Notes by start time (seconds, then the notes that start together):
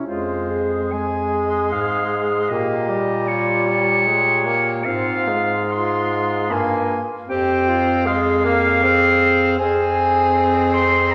0.05 F2 G#3 F4 C5
0.50 G#4
0.92 G#3 G#5
1.72 G#2 G#4 F5
2.49 A#2 A#3 G4 D#5
2.89 G3
3.28 F4 C#5
3.68 G4
4.07 G#3
4.46 A#3
4.85 G#2 C4 F4 F5
5.28 G#3
5.72 F4 C6
6.51 G2 A#3 G#5
7.28 F2 C4 G4 G5
7.68 F4
8.06 G#3 G#4 F5
8.45 A#3
8.83 C4 G#4
9.59 F2 C4 G#4 G#5
10.74 C6
11.11 A#5